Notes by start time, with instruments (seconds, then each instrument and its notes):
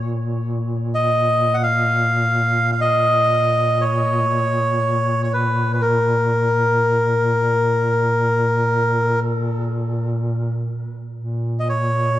Already playing: duduk A#2
0.95 melodica D#5
1.54 melodica F#5
1.63 melodica F5
2.72 melodica F5
2.81 melodica D#5
3.81 melodica C#5
5.24 melodica C#5
5.33 melodica B4
5.74 melodica B4
5.82 melodica A#4
11.16 duduk A#2
11.60 melodica D#5
11.69 melodica C#5